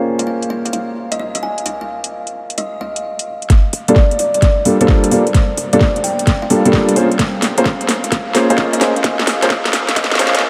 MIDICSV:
0, 0, Header, 1, 5, 480
1, 0, Start_track
1, 0, Tempo, 461538
1, 1722, Time_signature, 4, 2, 24, 8
1, 10916, End_track
2, 0, Start_track
2, 0, Title_t, "Kalimba"
2, 0, Program_c, 0, 108
2, 198, Note_on_c, 0, 77, 80
2, 252, Note_off_c, 0, 77, 0
2, 279, Note_on_c, 0, 77, 71
2, 383, Note_off_c, 0, 77, 0
2, 521, Note_on_c, 0, 77, 86
2, 624, Note_off_c, 0, 77, 0
2, 680, Note_on_c, 0, 77, 71
2, 732, Note_off_c, 0, 77, 0
2, 760, Note_on_c, 0, 77, 85
2, 957, Note_off_c, 0, 77, 0
2, 1162, Note_on_c, 0, 75, 85
2, 1213, Note_off_c, 0, 75, 0
2, 1243, Note_on_c, 0, 75, 73
2, 1345, Note_off_c, 0, 75, 0
2, 1405, Note_on_c, 0, 75, 84
2, 1468, Note_off_c, 0, 75, 0
2, 1485, Note_on_c, 0, 80, 84
2, 1679, Note_off_c, 0, 80, 0
2, 1723, Note_on_c, 0, 77, 89
2, 1824, Note_off_c, 0, 77, 0
2, 1884, Note_on_c, 0, 77, 71
2, 1935, Note_off_c, 0, 77, 0
2, 2682, Note_on_c, 0, 75, 88
2, 2878, Note_off_c, 0, 75, 0
2, 2921, Note_on_c, 0, 77, 86
2, 3402, Note_off_c, 0, 77, 0
2, 4040, Note_on_c, 0, 74, 80
2, 4092, Note_off_c, 0, 74, 0
2, 4121, Note_on_c, 0, 74, 72
2, 4223, Note_off_c, 0, 74, 0
2, 4362, Note_on_c, 0, 74, 85
2, 4464, Note_off_c, 0, 74, 0
2, 4520, Note_on_c, 0, 74, 73
2, 4572, Note_off_c, 0, 74, 0
2, 4599, Note_on_c, 0, 74, 89
2, 4796, Note_off_c, 0, 74, 0
2, 5002, Note_on_c, 0, 72, 84
2, 5053, Note_off_c, 0, 72, 0
2, 5082, Note_on_c, 0, 72, 72
2, 5184, Note_off_c, 0, 72, 0
2, 5960, Note_on_c, 0, 74, 90
2, 6265, Note_off_c, 0, 74, 0
2, 6279, Note_on_c, 0, 79, 88
2, 6476, Note_off_c, 0, 79, 0
2, 6680, Note_on_c, 0, 77, 86
2, 6732, Note_off_c, 0, 77, 0
2, 6763, Note_on_c, 0, 77, 74
2, 6865, Note_off_c, 0, 77, 0
2, 7882, Note_on_c, 0, 77, 88
2, 7933, Note_off_c, 0, 77, 0
2, 7961, Note_on_c, 0, 77, 73
2, 8063, Note_off_c, 0, 77, 0
2, 8202, Note_on_c, 0, 77, 86
2, 8304, Note_off_c, 0, 77, 0
2, 8361, Note_on_c, 0, 77, 75
2, 8413, Note_off_c, 0, 77, 0
2, 8445, Note_on_c, 0, 77, 90
2, 8639, Note_off_c, 0, 77, 0
2, 8840, Note_on_c, 0, 75, 88
2, 8892, Note_off_c, 0, 75, 0
2, 8920, Note_on_c, 0, 75, 75
2, 9023, Note_off_c, 0, 75, 0
2, 9081, Note_on_c, 0, 75, 91
2, 9146, Note_off_c, 0, 75, 0
2, 9161, Note_on_c, 0, 80, 91
2, 9357, Note_off_c, 0, 80, 0
2, 9401, Note_on_c, 0, 77, 96
2, 9503, Note_off_c, 0, 77, 0
2, 9563, Note_on_c, 0, 77, 78
2, 9614, Note_off_c, 0, 77, 0
2, 10364, Note_on_c, 0, 75, 94
2, 10559, Note_off_c, 0, 75, 0
2, 10602, Note_on_c, 0, 77, 89
2, 10916, Note_off_c, 0, 77, 0
2, 10916, End_track
3, 0, Start_track
3, 0, Title_t, "Grand piano"
3, 0, Program_c, 1, 0
3, 0, Note_on_c, 1, 58, 70
3, 0, Note_on_c, 1, 61, 67
3, 0, Note_on_c, 1, 65, 63
3, 0, Note_on_c, 1, 68, 66
3, 0, Note_on_c, 1, 72, 78
3, 3383, Note_off_c, 1, 58, 0
3, 3383, Note_off_c, 1, 61, 0
3, 3383, Note_off_c, 1, 65, 0
3, 3383, Note_off_c, 1, 72, 0
3, 3384, Note_off_c, 1, 68, 0
3, 4040, Note_on_c, 1, 55, 79
3, 4040, Note_on_c, 1, 58, 75
3, 4040, Note_on_c, 1, 62, 75
3, 4040, Note_on_c, 1, 65, 73
3, 4040, Note_on_c, 1, 69, 86
3, 4095, Note_off_c, 1, 55, 0
3, 4095, Note_off_c, 1, 58, 0
3, 4095, Note_off_c, 1, 62, 0
3, 4095, Note_off_c, 1, 65, 0
3, 4095, Note_off_c, 1, 69, 0
3, 4841, Note_on_c, 1, 55, 73
3, 4841, Note_on_c, 1, 58, 63
3, 4841, Note_on_c, 1, 65, 64
3, 4841, Note_on_c, 1, 69, 80
3, 4842, Note_on_c, 1, 62, 66
3, 4949, Note_off_c, 1, 55, 0
3, 4949, Note_off_c, 1, 58, 0
3, 4949, Note_off_c, 1, 62, 0
3, 4949, Note_off_c, 1, 65, 0
3, 4949, Note_off_c, 1, 69, 0
3, 5000, Note_on_c, 1, 58, 75
3, 5000, Note_on_c, 1, 65, 78
3, 5001, Note_on_c, 1, 55, 82
3, 5001, Note_on_c, 1, 62, 76
3, 5001, Note_on_c, 1, 69, 92
3, 5302, Note_off_c, 1, 55, 0
3, 5302, Note_off_c, 1, 58, 0
3, 5302, Note_off_c, 1, 62, 0
3, 5302, Note_off_c, 1, 65, 0
3, 5302, Note_off_c, 1, 69, 0
3, 5321, Note_on_c, 1, 55, 75
3, 5321, Note_on_c, 1, 58, 70
3, 5321, Note_on_c, 1, 62, 69
3, 5321, Note_on_c, 1, 65, 70
3, 5321, Note_on_c, 1, 69, 81
3, 5429, Note_off_c, 1, 55, 0
3, 5429, Note_off_c, 1, 58, 0
3, 5429, Note_off_c, 1, 62, 0
3, 5429, Note_off_c, 1, 65, 0
3, 5429, Note_off_c, 1, 69, 0
3, 5961, Note_on_c, 1, 55, 82
3, 5961, Note_on_c, 1, 58, 75
3, 5961, Note_on_c, 1, 62, 75
3, 5961, Note_on_c, 1, 65, 77
3, 5961, Note_on_c, 1, 69, 95
3, 6016, Note_off_c, 1, 55, 0
3, 6016, Note_off_c, 1, 58, 0
3, 6016, Note_off_c, 1, 62, 0
3, 6016, Note_off_c, 1, 65, 0
3, 6016, Note_off_c, 1, 69, 0
3, 6762, Note_on_c, 1, 55, 75
3, 6762, Note_on_c, 1, 62, 66
3, 6762, Note_on_c, 1, 65, 66
3, 6763, Note_on_c, 1, 58, 68
3, 6763, Note_on_c, 1, 69, 82
3, 6870, Note_off_c, 1, 55, 0
3, 6870, Note_off_c, 1, 58, 0
3, 6870, Note_off_c, 1, 62, 0
3, 6870, Note_off_c, 1, 65, 0
3, 6870, Note_off_c, 1, 69, 0
3, 6921, Note_on_c, 1, 55, 86
3, 6921, Note_on_c, 1, 58, 80
3, 6921, Note_on_c, 1, 62, 77
3, 6921, Note_on_c, 1, 65, 80
3, 6921, Note_on_c, 1, 69, 94
3, 7222, Note_off_c, 1, 55, 0
3, 7222, Note_off_c, 1, 58, 0
3, 7223, Note_off_c, 1, 62, 0
3, 7223, Note_off_c, 1, 65, 0
3, 7223, Note_off_c, 1, 69, 0
3, 7243, Note_on_c, 1, 58, 75
3, 7243, Note_on_c, 1, 65, 72
3, 7243, Note_on_c, 1, 68, 70
3, 7243, Note_on_c, 1, 72, 86
3, 7244, Note_on_c, 1, 61, 72
3, 7350, Note_off_c, 1, 58, 0
3, 7350, Note_off_c, 1, 61, 0
3, 7350, Note_off_c, 1, 65, 0
3, 7350, Note_off_c, 1, 68, 0
3, 7350, Note_off_c, 1, 72, 0
3, 7881, Note_on_c, 1, 61, 80
3, 7881, Note_on_c, 1, 65, 79
3, 7882, Note_on_c, 1, 58, 84
3, 7882, Note_on_c, 1, 68, 79
3, 7882, Note_on_c, 1, 72, 95
3, 7936, Note_off_c, 1, 58, 0
3, 7936, Note_off_c, 1, 61, 0
3, 7936, Note_off_c, 1, 65, 0
3, 7936, Note_off_c, 1, 68, 0
3, 7936, Note_off_c, 1, 72, 0
3, 8682, Note_on_c, 1, 58, 74
3, 8682, Note_on_c, 1, 61, 69
3, 8682, Note_on_c, 1, 65, 66
3, 8682, Note_on_c, 1, 68, 68
3, 8682, Note_on_c, 1, 72, 83
3, 8789, Note_off_c, 1, 58, 0
3, 8789, Note_off_c, 1, 68, 0
3, 8790, Note_off_c, 1, 61, 0
3, 8790, Note_off_c, 1, 65, 0
3, 8790, Note_off_c, 1, 72, 0
3, 8841, Note_on_c, 1, 58, 85
3, 8841, Note_on_c, 1, 65, 83
3, 8841, Note_on_c, 1, 68, 83
3, 8841, Note_on_c, 1, 72, 94
3, 8842, Note_on_c, 1, 61, 80
3, 9143, Note_off_c, 1, 58, 0
3, 9143, Note_off_c, 1, 61, 0
3, 9143, Note_off_c, 1, 65, 0
3, 9143, Note_off_c, 1, 68, 0
3, 9143, Note_off_c, 1, 72, 0
3, 9161, Note_on_c, 1, 58, 80
3, 9161, Note_on_c, 1, 65, 72
3, 9161, Note_on_c, 1, 68, 71
3, 9162, Note_on_c, 1, 61, 73
3, 9162, Note_on_c, 1, 72, 85
3, 9269, Note_off_c, 1, 58, 0
3, 9269, Note_off_c, 1, 61, 0
3, 9269, Note_off_c, 1, 65, 0
3, 9269, Note_off_c, 1, 68, 0
3, 9269, Note_off_c, 1, 72, 0
3, 9802, Note_on_c, 1, 58, 87
3, 9802, Note_on_c, 1, 61, 80
3, 9802, Note_on_c, 1, 65, 78
3, 9802, Note_on_c, 1, 68, 81
3, 9802, Note_on_c, 1, 72, 97
3, 9856, Note_off_c, 1, 58, 0
3, 9856, Note_off_c, 1, 61, 0
3, 9856, Note_off_c, 1, 65, 0
3, 9856, Note_off_c, 1, 68, 0
3, 9856, Note_off_c, 1, 72, 0
3, 10602, Note_on_c, 1, 58, 84
3, 10602, Note_on_c, 1, 61, 80
3, 10602, Note_on_c, 1, 65, 80
3, 10602, Note_on_c, 1, 68, 77
3, 10602, Note_on_c, 1, 72, 97
3, 10842, Note_off_c, 1, 58, 0
3, 10842, Note_off_c, 1, 61, 0
3, 10842, Note_off_c, 1, 65, 0
3, 10842, Note_off_c, 1, 68, 0
3, 10842, Note_off_c, 1, 72, 0
3, 10916, End_track
4, 0, Start_track
4, 0, Title_t, "808-style bass"
4, 0, Program_c, 2, 38
4, 3643, Note_on_c, 2, 31, 99
4, 3855, Note_off_c, 2, 31, 0
4, 3882, Note_on_c, 2, 31, 81
4, 4580, Note_off_c, 2, 31, 0
4, 5240, Note_on_c, 2, 31, 80
4, 5307, Note_off_c, 2, 31, 0
4, 5562, Note_on_c, 2, 31, 100
4, 5774, Note_off_c, 2, 31, 0
4, 5801, Note_on_c, 2, 31, 85
4, 6499, Note_off_c, 2, 31, 0
4, 7162, Note_on_c, 2, 31, 82
4, 7228, Note_off_c, 2, 31, 0
4, 7482, Note_on_c, 2, 34, 96
4, 7694, Note_off_c, 2, 34, 0
4, 7722, Note_on_c, 2, 34, 86
4, 8420, Note_off_c, 2, 34, 0
4, 9081, Note_on_c, 2, 34, 83
4, 9148, Note_off_c, 2, 34, 0
4, 9404, Note_on_c, 2, 34, 101
4, 9615, Note_off_c, 2, 34, 0
4, 9643, Note_on_c, 2, 34, 86
4, 10340, Note_off_c, 2, 34, 0
4, 10763, Note_on_c, 2, 41, 98
4, 10843, Note_off_c, 2, 41, 0
4, 10916, End_track
5, 0, Start_track
5, 0, Title_t, "Drums"
5, 201, Note_on_c, 9, 42, 68
5, 305, Note_off_c, 9, 42, 0
5, 442, Note_on_c, 9, 42, 35
5, 546, Note_off_c, 9, 42, 0
5, 683, Note_on_c, 9, 42, 52
5, 762, Note_off_c, 9, 42, 0
5, 762, Note_on_c, 9, 42, 61
5, 866, Note_off_c, 9, 42, 0
5, 1162, Note_on_c, 9, 42, 64
5, 1266, Note_off_c, 9, 42, 0
5, 1403, Note_on_c, 9, 42, 65
5, 1507, Note_off_c, 9, 42, 0
5, 1642, Note_on_c, 9, 42, 35
5, 1723, Note_off_c, 9, 42, 0
5, 1723, Note_on_c, 9, 42, 67
5, 1827, Note_off_c, 9, 42, 0
5, 2121, Note_on_c, 9, 42, 65
5, 2225, Note_off_c, 9, 42, 0
5, 2360, Note_on_c, 9, 42, 35
5, 2464, Note_off_c, 9, 42, 0
5, 2600, Note_on_c, 9, 42, 52
5, 2680, Note_off_c, 9, 42, 0
5, 2680, Note_on_c, 9, 42, 62
5, 2784, Note_off_c, 9, 42, 0
5, 3080, Note_on_c, 9, 42, 63
5, 3184, Note_off_c, 9, 42, 0
5, 3320, Note_on_c, 9, 42, 64
5, 3424, Note_off_c, 9, 42, 0
5, 3559, Note_on_c, 9, 42, 35
5, 3639, Note_off_c, 9, 42, 0
5, 3639, Note_on_c, 9, 38, 46
5, 3639, Note_on_c, 9, 42, 62
5, 3642, Note_on_c, 9, 36, 95
5, 3743, Note_off_c, 9, 38, 0
5, 3743, Note_off_c, 9, 42, 0
5, 3746, Note_off_c, 9, 36, 0
5, 3879, Note_on_c, 9, 46, 106
5, 3983, Note_off_c, 9, 46, 0
5, 4038, Note_on_c, 9, 42, 64
5, 4119, Note_on_c, 9, 38, 46
5, 4122, Note_on_c, 9, 36, 94
5, 4142, Note_off_c, 9, 42, 0
5, 4223, Note_off_c, 9, 38, 0
5, 4226, Note_off_c, 9, 36, 0
5, 4278, Note_on_c, 9, 42, 34
5, 4358, Note_on_c, 9, 46, 110
5, 4382, Note_off_c, 9, 42, 0
5, 4462, Note_off_c, 9, 46, 0
5, 4518, Note_on_c, 9, 42, 50
5, 4599, Note_off_c, 9, 42, 0
5, 4599, Note_on_c, 9, 38, 51
5, 4599, Note_on_c, 9, 42, 59
5, 4602, Note_on_c, 9, 36, 98
5, 4703, Note_off_c, 9, 38, 0
5, 4703, Note_off_c, 9, 42, 0
5, 4706, Note_off_c, 9, 36, 0
5, 4840, Note_on_c, 9, 46, 105
5, 4944, Note_off_c, 9, 46, 0
5, 5000, Note_on_c, 9, 42, 64
5, 5079, Note_on_c, 9, 38, 53
5, 5082, Note_on_c, 9, 36, 92
5, 5104, Note_off_c, 9, 42, 0
5, 5183, Note_off_c, 9, 38, 0
5, 5186, Note_off_c, 9, 36, 0
5, 5239, Note_on_c, 9, 42, 64
5, 5320, Note_on_c, 9, 46, 102
5, 5343, Note_off_c, 9, 42, 0
5, 5424, Note_off_c, 9, 46, 0
5, 5478, Note_on_c, 9, 42, 36
5, 5559, Note_off_c, 9, 42, 0
5, 5559, Note_on_c, 9, 38, 56
5, 5559, Note_on_c, 9, 42, 61
5, 5562, Note_on_c, 9, 36, 94
5, 5663, Note_off_c, 9, 38, 0
5, 5663, Note_off_c, 9, 42, 0
5, 5666, Note_off_c, 9, 36, 0
5, 5798, Note_on_c, 9, 46, 107
5, 5902, Note_off_c, 9, 46, 0
5, 5958, Note_on_c, 9, 42, 63
5, 6039, Note_on_c, 9, 38, 60
5, 6042, Note_on_c, 9, 36, 95
5, 6062, Note_off_c, 9, 42, 0
5, 6143, Note_off_c, 9, 38, 0
5, 6146, Note_off_c, 9, 36, 0
5, 6199, Note_on_c, 9, 42, 33
5, 6281, Note_on_c, 9, 46, 109
5, 6303, Note_off_c, 9, 42, 0
5, 6385, Note_off_c, 9, 46, 0
5, 6440, Note_on_c, 9, 42, 50
5, 6521, Note_off_c, 9, 42, 0
5, 6521, Note_on_c, 9, 38, 64
5, 6521, Note_on_c, 9, 42, 59
5, 6522, Note_on_c, 9, 36, 98
5, 6625, Note_off_c, 9, 38, 0
5, 6625, Note_off_c, 9, 42, 0
5, 6626, Note_off_c, 9, 36, 0
5, 6762, Note_on_c, 9, 46, 98
5, 6866, Note_off_c, 9, 46, 0
5, 6921, Note_on_c, 9, 42, 62
5, 7002, Note_on_c, 9, 36, 95
5, 7002, Note_on_c, 9, 38, 69
5, 7025, Note_off_c, 9, 42, 0
5, 7106, Note_off_c, 9, 36, 0
5, 7106, Note_off_c, 9, 38, 0
5, 7161, Note_on_c, 9, 42, 61
5, 7241, Note_on_c, 9, 46, 106
5, 7265, Note_off_c, 9, 42, 0
5, 7345, Note_off_c, 9, 46, 0
5, 7400, Note_on_c, 9, 42, 35
5, 7481, Note_off_c, 9, 42, 0
5, 7481, Note_on_c, 9, 38, 74
5, 7481, Note_on_c, 9, 42, 63
5, 7483, Note_on_c, 9, 36, 97
5, 7585, Note_off_c, 9, 38, 0
5, 7585, Note_off_c, 9, 42, 0
5, 7587, Note_off_c, 9, 36, 0
5, 7720, Note_on_c, 9, 38, 76
5, 7720, Note_on_c, 9, 46, 100
5, 7824, Note_off_c, 9, 38, 0
5, 7824, Note_off_c, 9, 46, 0
5, 7880, Note_on_c, 9, 42, 63
5, 7962, Note_on_c, 9, 38, 77
5, 7963, Note_on_c, 9, 36, 94
5, 7984, Note_off_c, 9, 42, 0
5, 8066, Note_off_c, 9, 38, 0
5, 8067, Note_off_c, 9, 36, 0
5, 8121, Note_on_c, 9, 42, 35
5, 8202, Note_on_c, 9, 38, 78
5, 8202, Note_on_c, 9, 46, 105
5, 8225, Note_off_c, 9, 42, 0
5, 8306, Note_off_c, 9, 38, 0
5, 8306, Note_off_c, 9, 46, 0
5, 8362, Note_on_c, 9, 42, 52
5, 8443, Note_off_c, 9, 42, 0
5, 8443, Note_on_c, 9, 36, 99
5, 8443, Note_on_c, 9, 38, 78
5, 8443, Note_on_c, 9, 42, 62
5, 8547, Note_off_c, 9, 36, 0
5, 8547, Note_off_c, 9, 38, 0
5, 8547, Note_off_c, 9, 42, 0
5, 8681, Note_on_c, 9, 38, 84
5, 8681, Note_on_c, 9, 46, 97
5, 8785, Note_off_c, 9, 38, 0
5, 8785, Note_off_c, 9, 46, 0
5, 8842, Note_on_c, 9, 42, 63
5, 8922, Note_on_c, 9, 38, 86
5, 8924, Note_on_c, 9, 36, 98
5, 8946, Note_off_c, 9, 42, 0
5, 9026, Note_off_c, 9, 38, 0
5, 9028, Note_off_c, 9, 36, 0
5, 9083, Note_on_c, 9, 42, 63
5, 9163, Note_on_c, 9, 38, 89
5, 9163, Note_on_c, 9, 46, 103
5, 9187, Note_off_c, 9, 42, 0
5, 9267, Note_off_c, 9, 38, 0
5, 9267, Note_off_c, 9, 46, 0
5, 9322, Note_on_c, 9, 42, 37
5, 9403, Note_off_c, 9, 42, 0
5, 9403, Note_on_c, 9, 36, 100
5, 9403, Note_on_c, 9, 38, 92
5, 9403, Note_on_c, 9, 42, 65
5, 9507, Note_off_c, 9, 36, 0
5, 9507, Note_off_c, 9, 38, 0
5, 9507, Note_off_c, 9, 42, 0
5, 9562, Note_on_c, 9, 38, 81
5, 9643, Note_off_c, 9, 38, 0
5, 9643, Note_on_c, 9, 38, 92
5, 9643, Note_on_c, 9, 46, 103
5, 9747, Note_off_c, 9, 38, 0
5, 9747, Note_off_c, 9, 46, 0
5, 9802, Note_on_c, 9, 38, 82
5, 9802, Note_on_c, 9, 42, 63
5, 9882, Note_off_c, 9, 38, 0
5, 9882, Note_on_c, 9, 38, 97
5, 9883, Note_on_c, 9, 36, 99
5, 9906, Note_off_c, 9, 42, 0
5, 9986, Note_off_c, 9, 38, 0
5, 9987, Note_off_c, 9, 36, 0
5, 10041, Note_on_c, 9, 38, 84
5, 10041, Note_on_c, 9, 42, 34
5, 10121, Note_off_c, 9, 38, 0
5, 10121, Note_on_c, 9, 38, 101
5, 10121, Note_on_c, 9, 46, 105
5, 10145, Note_off_c, 9, 42, 0
5, 10225, Note_off_c, 9, 38, 0
5, 10225, Note_off_c, 9, 46, 0
5, 10281, Note_on_c, 9, 38, 90
5, 10281, Note_on_c, 9, 42, 50
5, 10362, Note_off_c, 9, 38, 0
5, 10362, Note_off_c, 9, 42, 0
5, 10362, Note_on_c, 9, 38, 100
5, 10362, Note_on_c, 9, 42, 64
5, 10363, Note_on_c, 9, 36, 102
5, 10442, Note_off_c, 9, 38, 0
5, 10442, Note_on_c, 9, 38, 89
5, 10466, Note_off_c, 9, 42, 0
5, 10467, Note_off_c, 9, 36, 0
5, 10520, Note_off_c, 9, 38, 0
5, 10520, Note_on_c, 9, 38, 91
5, 10560, Note_off_c, 9, 38, 0
5, 10560, Note_on_c, 9, 38, 92
5, 10600, Note_off_c, 9, 38, 0
5, 10600, Note_on_c, 9, 38, 100
5, 10600, Note_on_c, 9, 46, 104
5, 10680, Note_off_c, 9, 38, 0
5, 10680, Note_on_c, 9, 38, 93
5, 10704, Note_off_c, 9, 46, 0
5, 10760, Note_off_c, 9, 38, 0
5, 10760, Note_on_c, 9, 38, 95
5, 10760, Note_on_c, 9, 42, 64
5, 10801, Note_off_c, 9, 38, 0
5, 10801, Note_on_c, 9, 38, 94
5, 10864, Note_off_c, 9, 42, 0
5, 10905, Note_off_c, 9, 38, 0
5, 10916, End_track
0, 0, End_of_file